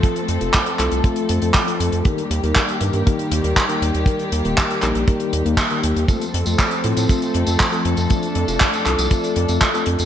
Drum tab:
HH |xxxxxxxxxxxxxxxx|xxxxxxxxxxxxxxxx|xxxxxxxxxxxxxxxx|xxxxxxxxxxxxxxxx|
TB |----------------|----------------|----------------|xx-xxx-xxx-xxx-x|
CP |----x-x-----x---|----x-------x---|----x-x-----x---|----x-------x---|
BD |o---o---o---o---|o---o---o---o---|o---o---o---o---|o---o---o---o---|

HH |xxxxxxxxxxxxxxxx|
TB |xx-xxx-xxx-xxx-x|
CP |----x-x-----x---|
BD |o---o---o---o---|